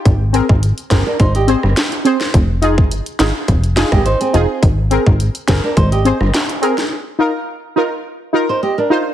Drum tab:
HH |x-x-xxx-xxx-xxx-|x-x-xxx-xxx-xxx-|x-x-xxx-xxx-xxx-|----------------|
CP |------x-----x---|------x---x-----|------x-----x---|----------------|
SD |------o----ro--o|------o---or----|------o----ro--o|----------------|
BD |o--o--o-o-------|o--o----o--o----|o--o--o-o-------|----------------|